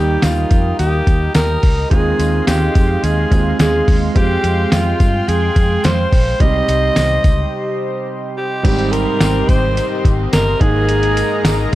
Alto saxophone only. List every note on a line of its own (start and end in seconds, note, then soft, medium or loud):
0.00 0.24 G4 medium
0.23 0.78 F4 medium
0.79 1.31 G4 medium
1.35 1.88 A#4 loud
1.91 2.44 G#4 medium
2.47 3.05 G4 medium
3.04 3.59 G#4 loud
3.60 3.99 G#4 medium
4.16 4.73 G4 loud
4.72 5.30 F4 medium
5.29 5.86 G#4 loud
5.85 6.42 C5 loud
6.41 8.09 D#5 loud
8.37 8.93 G4 medium
8.92 9.50 A#4 loud
9.49 10.05 C5 loud
10.33 10.62 A#4 loud
10.61 11.73 G#4 loud